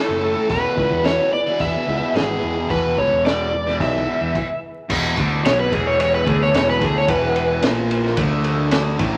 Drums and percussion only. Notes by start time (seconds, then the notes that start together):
0.49 kick, open hi-hat
0.77 kick
1.05 snare, open hi-hat
1.60 kick, open hi-hat
2.16 snare, open hi-hat
2.70 kick, open hi-hat
2.98 kick
3.26 snare, open hi-hat
3.68 snare
3.80 kick, open hi-hat
4.35 kick, crash
4.90 kick, crash
5.17 kick, ride
5.45 snare, ride
5.72 kick, ride
6.00 ride
6.27 kick, ride
6.54 snare, ride
6.69 snare
6.81 kick, ride
7.08 kick, ride
7.36 ride
7.62 snare, ride
7.91 ride
8.06 snare
8.17 kick, ride
8.44 ride
8.71 snare, ride
8.87 snare
8.99 kick, ride